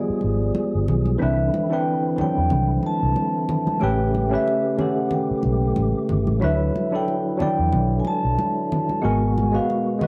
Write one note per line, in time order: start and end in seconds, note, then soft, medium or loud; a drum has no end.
0.00 1.18 F3 medium
0.00 1.18 G3 medium
0.00 1.23 G3 medium
0.00 1.23 B3 medium
0.00 1.22 F4 medium
0.00 1.22 G4 medium
0.00 1.17 G#4 medium
0.00 1.22 G#4 loud
0.00 0.84 D5 medium
0.10 muted fingered electric bass stroke soft
0.21 0.50 G#1 medium
0.21 high conga soft
0.55 muted conga soft
0.55 high conga medium
0.75 0.86 G1 medium
0.88 1.15 B1 medium
0.88 muted conga soft
0.88 low conga medium
1.06 high conga medium
1.18 1.48 C2 loud
1.18 3.78 D3 medium
1.18 1.59 E3 medium
1.18 3.78 C4 medium
1.18 1.59 C4 medium
1.18 1.60 D4 medium
1.18 3.78 E4 medium
1.23 1.61 B4 loud
1.23 1.74 E5 medium
1.54 muted conga soft
1.54 high conga medium
1.70 2.08 E3 medium
1.70 2.09 C4 medium
1.70 2.10 D4 medium
1.70 2.10 B4 medium
1.70 2.20 G5 loud
2.16 3.21 E3 medium
2.16 3.22 C4 medium
2.16 3.23 D4 medium
2.16 muted fingered electric bass stroke soft
2.16 muted conga soft
2.16 low conga medium
2.21 3.23 F#3 medium
2.21 2.87 G5 loud
2.38 2.49 E2 medium
2.50 2.78 C2 loud
2.50 muted conga soft
2.50 low conga medium
2.83 3.79 A5 loud
2.83 muted conga soft
2.83 high conga soft
3.03 3.14 C2 medium
3.16 high conga medium
3.49 muted conga soft
3.49 low conga medium
3.67 high conga medium
3.80 4.35 A1 loud
3.80 6.39 C#3 medium
3.80 4.20 A3 medium
3.80 6.39 A3 medium
3.80 4.20 C#4 medium
3.80 6.39 G4 medium
3.80 4.21 G4 medium
3.80 4.22 B4 loud
3.80 4.29 G5 loud
3.80 muted conga soft
4.15 high conga medium
4.29 4.69 A3 medium
4.29 4.69 C#4 medium
4.29 4.70 G4 medium
4.34 4.71 B4 medium
4.34 4.82 E5 medium
4.48 muted conga soft
4.77 5.82 A3 medium
4.77 5.83 C#4 medium
4.77 5.83 G4 medium
4.77 5.84 A4 medium
4.77 muted conga soft
4.77 low conga medium
4.81 5.14 F#5 medium
5.11 6.06 G5 medium
5.11 muted conga soft
5.11 low conga medium
5.31 muted fingered electric bass stroke soft
5.43 5.71 B1 medium
5.43 muted conga soft
5.43 high conga soft
5.76 5.92 A1 loud
5.76 muted conga soft
5.76 high conga medium
6.09 6.25 G1 medium
6.09 low conga medium
6.27 6.40 A1 medium
6.27 high conga medium
6.40 6.69 D2 loud
6.40 9.00 D3 medium
6.40 6.80 F#3 medium
6.40 9.00 F#3 medium
6.40 6.81 D4 medium
6.40 9.00 E4 medium
6.40 6.82 E4 medium
6.40 6.82 B4 loud
6.40 muted conga soft
6.44 6.90 E5 medium
6.76 muted conga soft
6.76 high conga medium
6.91 7.30 F#3 medium
6.91 7.31 D4 medium
6.91 7.31 E4 medium
6.91 7.32 A4 medium
6.96 7.41 G5 loud
7.08 muted conga soft
7.38 8.43 F#3 medium
7.38 8.43 D4 medium
7.38 8.44 E4 medium
7.38 muted fingered electric bass stroke soft
7.38 muted conga soft
7.38 low conga medium
7.42 8.45 D5 medium
7.42 7.96 G5 loud
7.59 7.70 E2 medium
7.72 8.00 B1 loud
7.72 muted conga soft
7.72 low conga medium
8.00 8.05 G#5 medium
8.05 9.00 A5 loud
8.05 muted conga soft
8.05 high conga soft
8.25 8.36 B1 medium
8.39 muted conga soft
8.39 high conga medium
8.72 low conga medium
8.89 high conga medium
9.02 9.57 G#1 loud
9.02 10.07 B2 medium
9.02 9.42 G#3 medium
9.02 10.07 G#3 medium
9.02 9.42 B3 medium
9.02 10.07 F#4 medium
9.02 9.43 F#4 medium
9.02 9.43 A#4 loud
9.02 9.51 G#5 loud
9.38 muted conga soft
9.38 high conga medium
9.52 9.91 G#3 medium
9.52 9.91 B3 medium
9.52 9.92 F#4 medium
9.52 10.03 F5 medium
9.56 9.93 B4 medium
9.70 muted conga soft
9.99 10.07 G#3 medium
9.99 10.07 B3 medium
9.99 10.07 F#4 medium
9.99 10.07 D#5 medium
9.99 muted conga soft
9.99 low conga medium
10.03 10.07 B4 medium